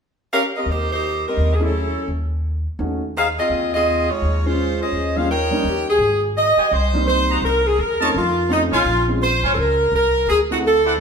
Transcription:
0.32 saxophone section C#4 G4 A#4 F5
0.57 saxophone section C4 G4 A#4 D#5
0.66 upright bass D#2
0.71 saxophone section A#3 D#4 G4 C5
0.92 saxophone section A#3 D#4 G4 C5
1.27 saxophone section G3 C4 D#4 A#4
1.37 upright bass D#2
1.55 saxophone section G#4
1.59 grand piano A3 C#4 E4 G#4
1.64 saxophone section F#3 C#4 E4 A4
2.08 upright bass D#2
2.79 upright bass D#2, grand piano A3 C#4 D#4 F#4
3.17 saxophone section D#4 G#4 C5 F5
3.39 saxophone section C4 F4 G#4 D#5
3.49 upright bass D#2
3.74 saxophone section C4 F4 G#4 D#5
4.10 saxophone section G#3 D#4 F4 C#5
4.22 upright bass D#2
4.44 grand piano G#3 C#4 F4 C5, saxophone section G#3 C#4 F4 C5
4.82 saxophone section C#4 G#4 C5 D#5
4.92 upright bass D#2
5.16 grand piano G3 A#3 C#4 F4, saxophone section C#4 G#4 C5 F5
5.30 saxophone section D#4 A#4 C#5 G5
5.51 grand piano G3 A#3 C#4 D#4
5.64 upright bass D#2
5.68 saxophone section G4
5.90 saxophone section G#4
5.98 upright bass G#1
6.38 saxophone section D#5
6.57 trumpet section G4 C5 D#5 G#5, muted upright bass stroke
6.71 upright bass C2, saxophone section C5
6.93 grand piano G3 A#3 C4 D#4
7.07 saxophone section C5
7.29 trumpet section F#4 C5 D#5 A#5
7.42 upright bass C2, saxophone section A#4
7.67 saxophone section G#4
7.79 upright bass E2, saxophone section A#4
8.00 grand piano A3 C4 C#4 D#4, trumpet section F4 C#5 D#5 A5
8.15 upright bass F2, saxophone section F4
8.48 grand piano A3 C4 C#4 D#4, saxophone section D#4
8.71 upright bass B1, trumpet section F4 A#4 C#5 G#5, saxophone section F4
8.85 upright bass A#1
9.08 grand piano G#3 C4 C#4 F4
9.23 saxophone section C5
9.43 upright bass G#1, trumpet section F4 A#4 C#5 G#5
9.54 upright bass C#2, saxophone section A4
9.59 saxophone section A#4
9.92 upright bass C2, saxophone section A#4
10.27 upright bass D2, saxophone section G#4
10.51 grand piano A3 C4 E4 F#4, saxophone section F#4
10.67 saxophone section A4
10.85 trumpet section E4 C5 D5 F#5

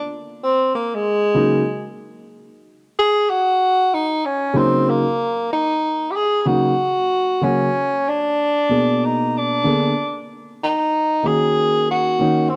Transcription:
Already playing: tenor saxophone D4
0.44 tenor saxophone C4
0.75 tenor saxophone A#3
0.95 tenor saxophone G#3
1.34 grand piano C#3 F#3 A#3 D#4
2.99 tenor saxophone G#4
3.30 tenor saxophone F#4
3.94 tenor saxophone D#4
4.26 tenor saxophone C#4
4.54 grand piano C#3 F#3 A#3 D#4
4.58 tenor saxophone C4
4.89 tenor saxophone A#3
5.53 tenor saxophone D#4
6.11 tenor saxophone G4
6.16 tenor saxophone G#4
6.42 grand piano C#3 F#3, tenor saxophone G#4
6.47 grand piano A#3 D#4, tenor saxophone F#4
7.41 grand piano C#3 F#3 A#3 F#4, tenor saxophone C#4
8.09 tenor saxophone D4
8.69 grand piano B2 A#3 B3 G#4
9.05 tenor saxophone D#4
9.38 tenor saxophone D4
9.64 grand piano D3 A#3 B3 G#4
10.64 tenor saxophone D#4
11.23 grand piano D#3 A#3 C#4 F#4, tenor saxophone G#4
11.91 tenor saxophone F#4
12.19 grand piano D#3 A#3 C#4 D#4
12.50 tenor saxophone C4

